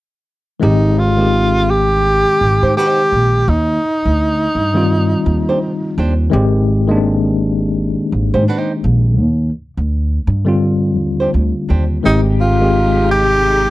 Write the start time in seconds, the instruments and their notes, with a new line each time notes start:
0.60 upright bass G#1, tine electric piano D#3 G#3 C4 G4, tenor saxophone D#4
0.99 tenor saxophone F4
1.17 tine electric piano D#3 G#3 C4 G4
1.70 tenor saxophone G4
2.41 upright bass G#1
2.63 upright bass G#2, nylon-string guitar D#4 G4 C5
2.77 nylon-string guitar D#4 G4 C5, tenor saxophone G4
3.12 upright bass A#1
3.48 upright bass D#2, tenor saxophone D#4
4.05 upright bass D2
4.55 upright bass G2
4.74 tine electric piano D#3 G3 C4 F4
5.26 upright bass D#2
5.49 nylon-string guitar D4 G4 C5
5.98 upright bass D#2, nylon-string guitar D4 G4 C5
6.30 upright bass G#1, tine electric piano D#3 G#3 C4 G4
6.87 tine electric piano D#3 G#3 A#3 D4
6.97 tine electric piano C4
8.12 upright bass G#1
8.34 upright bass G#2, nylon-string guitar D#4 G4 C5
8.48 nylon-string guitar D#4 G4 C5
8.84 upright bass A#1
9.20 upright bass D#2
9.77 upright bass D2
10.27 upright bass G2
10.45 tine electric piano D3 G3 C4 F4
10.98 upright bass D#2
11.20 nylon-string guitar D4 G4 C5
11.34 upright bass D2
11.69 upright bass D#2, nylon-string guitar D4 G4 C5
12.03 upright bass G#1, string section C3 G#3 D#4 G4, tine electric piano D#3 G#3 C4 G4, tenor saxophone D#4
12.41 tenor saxophone F4
12.60 tine electric piano D#3 G#3 C4 G4
13.11 tenor saxophone G4